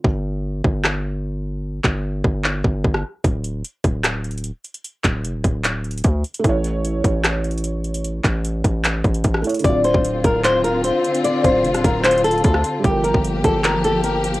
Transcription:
<<
  \new Staff \with { instrumentName = "Nylon-string guitar" } { \time 4/4 \key d \minor \tempo 4 = 150 r1 | r1 | r1 | r1 |
r1 | r1 | d''8 c''4 bes'8 c''8 bes'8 c''4 | d''8 c''4 bes'8 c''8 a'8 a'4 |
g'8 bes'4 a'8 bes'8 a'8 bes'4 | }
  \new Staff \with { instrumentName = "Felt piano" } { \time 4/4 \key d \minor r1 | r1 | r1 | r1 |
<a e' cis''>1~ | <a e' cis''>2.~ <a e' cis''>8 <a e' cis''>8 | <d c' f'>1~ | <d c' f'>1 |
<g f' bes'>1 | }
  \new Staff \with { instrumentName = "String section" } { \time 4/4 \key d \minor r1 | r1 | r1 | r1 |
r1 | r1 | <d c' f'>1~ | <d c' f'>1 |
<f bes g'>1 | }
  \new Staff \with { instrumentName = "808-style bass" } { \clef bass \time 4/4 \key d \minor g,,4. g,,2~ g,,8~ | g,,8 g,,4 g,,4 g,,8 g,,8 r8 | d,,4 r8 d,,4.~ d,,16 r8. | r8 d,,8 f,,16 d,,16 d,,4. d,8 r8 |
a,,4. a,,2~ a,,8~ | a,,8 a,,4 a,,4 a,,8 a,,8 r8 | d,,8. d,,8. d,,4.~ d,,16 r8. | r8 d,,8 f,,16 d,,16 d,,4. d,8 r8 |
g,,8. g,,8. g,,2~ g,,8 | }
  \new DrumStaff \with { instrumentName = "Drums" } \drummode { \time 4/4 bd4 r8 bd8 <hc ss>4 r4 | r8 <hc bd>8 r8 bd8 hc8 bd8 bd16 ss8. | <hh bd>8 hh8 hh8 <hh bd>8 \tuplet 3/2 { <hc hh ss>16 r16 r16 hh16 hh16 hh16 } hh8 hh16 hh16 | hh8 <hc hh bd>8 hh8 <hh bd>8 \tuplet 3/2 { <hc hh>16 r16 r16 hh16 hh16 hh16 } <hh bd>8 hh16 hh16 |
<hh bd>8 hh8 hh8 <hh bd>8 \tuplet 3/2 { <hc hh ss>16 r16 r16 hh16 hh16 hh16 } hh8 hh16 hh16 | hh8 <hc hh bd>8 hh8 <hh bd>8 <hc hh>8 <hh bd>16 hh16 <hh bd>16 ss16 <hh hho>32 hh32 hh32 hh32 | <hh bd>8 hh16 bd16 hh8 <hh bd>8 <hc hh>8 hh8 hh8 hh16 hh16 | hh8 <hh bd>8 hh16 <hh ss>16 <hh bd>8 \tuplet 3/2 { <hc hh>16 hh16 hh16 hh16 hh16 hh16 } <hh bd>16 ss16 hh8 |
<hh bd>8 hh16 bd16 hh8 <hh bd>8 <hc hh>8 hh8 hh8 hh16 hh16 | }
>>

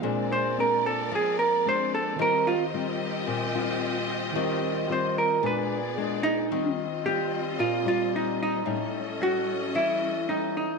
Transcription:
<<
  \new Staff \with { instrumentName = "Tine electric piano" } { \time 4/4 \key ees \major \tempo 4 = 111 <bes f' aes' c'' d''>1 | <ees f' g' bes' c''>1 | <ees f' g' bes' c''>2 <f' aes' ces'' d''>2 | r1 |
r1 | }
  \new Staff \with { instrumentName = "Hollow-body jazz guitar" } { \time 4/4 \key ees \major r8 c''8 bes'8 a'8 aes'8 bes'8 c''8 a'8 | bes'8 f'8 r2. | r4 c''8 bes'8 ces''4 r8 ees'8~ | ees'8 r8 g'4 f'8 f'8 ees'8 ees'8~ |
ees'8 r8 ges'4 e'4 dis'8 dis'8 | }
  \new Staff \with { instrumentName = "String section" } { \time 4/4 \key ees \major << { <aes bes' d''>1 | <f' g' ees''>1~ | <f' g' ees''>2 <aes' d''>2 | <g f' ees''>1 |
<a' dis''>1 | } \\ { c'1~ | c'1~ | c'2 ces'2 | c'1 |
cis'1 | } >> }
  \new Staff \with { instrumentName = "Nylon-string guitar" } { \time 4/4 \key ees \major << { <aes c' d'>4 <aes c' d'>4. r8 <aes c' d'>4 | <g c' f'>8 r8 <g c' f'>4. <g c' f'>4. | <g c' f'>4 <g c' f'>4 <aes ces' d'>8 r8 <aes ces' d'>4 | <g c' f'>8 r8 <g c' f'>4. <g c' f'>4. |
<g cis' dis'>8 r8 <g cis'>2 <g cis' dis'>8 r8 | } \\ { bes,2 f2 | ees2 bes,2 | ees2 bes,2 | ees2 bes,2 |
a,2 e2 | } >> }
>>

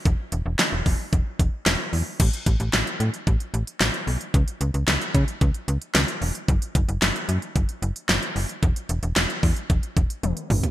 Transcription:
<<
  \new Staff \with { instrumentName = "FM bass" } { \clef bass \time 4/4 \key e \mixolydian \tempo 4 = 112 e,,16 r16 e,,16 e,,16 r16 e,,16 e,,16 r16 e,,16 r16 e,,16 r16 e,,16 r16 e,16 r16 | a,,16 r16 a,,16 a,,16 a,,16 r16 a,16 r16 a,,16 r16 a,,16 r16 a,,16 r16 b,,16 r16 | cis,16 r16 cis,16 cis,16 cis,16 r16 cis16 r16 cis,16 r16 cis,16 r16 cis,16 r16 e,,16 r16 | fis,,16 r16 fis,,16 fis,,16 fis,,16 r16 fis,16 r16 fis,,16 r16 fis,,16 r16 fis,,16 r16 fis,,16 r16 |
e,,16 r16 e,,16 e,,16 e,,16 r16 e,16 r16 e,,16 r16 e,,16 r16 e,,16 r16 gis,,16 r16 | }
  \new DrumStaff \with { instrumentName = "Drums" } \drummode { \time 4/4 <hh bd>8 hh8 <hc hh sn>8 <hho bd>8 <hh bd>8 <hh bd>8 <hc hh sn>8 hho8 | <cymc hh bd>16 hh16 <hh bd>16 hh16 <hc hh sn>16 hh16 hh16 hh16 <hh bd>16 hh16 hh16 hh16 <hc hh sn>16 hh16 hho16 hh16 | <hh bd>16 hh16 hh16 hh16 <hc hh sn>16 hh16 <hh bd>16 hh16 <hh bd>16 hh16 hh16 hh16 <hc hh sn>16 hh16 hho16 hh16 | <hh bd>16 hh16 <hh bd>16 hh16 <hc hh sn>16 hh16 hh16 hh16 <hh bd>16 hh16 hh16 hh16 <hc hh sn>16 hh16 hho16 hh16 |
<hh bd>16 hh16 hh16 hh16 <hc hh sn>16 hh16 <hho bd>16 hh16 <hh bd>16 hh16 <hh bd>16 hh16 <hh tommh>16 hh16 <hho toml>16 <hh tomfh>16 | }
>>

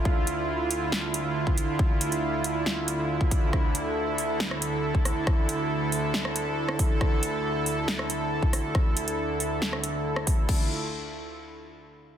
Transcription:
<<
  \new Staff \with { instrumentName = "Supersaw synth" } { \time 4/4 \key d \minor \tempo 4 = 138 << { f'1~ | f'1 | a'1~ | a'1~ |
a'1~ | a'1 | <d a e' f'>8 r2. r8 | } \\ { <d, d e'>1~ | <d, d e'>1~ | <d, d e'>1~ | <d, d e'>1~ |
<d, d e'>1~ | <d, d e'>1 | r1 | } >> }
  \new DrumStaff \with { instrumentName = "Drums" } \drummode { \time 4/4 bd8 hh8 r8 hh8 sn8 hh8 r16 bd16 hh8 | bd8 hh16 hh16 r8 hh8 sn8 hh8 r16 bd16 <hh bd>8 | <bd ss>8 hh8 r8 hho8 sn16 ss16 hh8 r16 bd16 <hho ss>8 | <bd ss>8 hh8 r8 hho8 sn16 ss16 hh8 r16 ss16 <hho bd>8 |
<bd ss>8 hh8 r8 hho8 sn16 ss16 hh8 r16 bd16 <hho ss>8 | <bd ss>8 hh16 hh16 r8 hho8 sn16 ss16 hh8 r16 ss16 <hho bd>8 | <cymc bd>4 r4 r4 r4 | }
>>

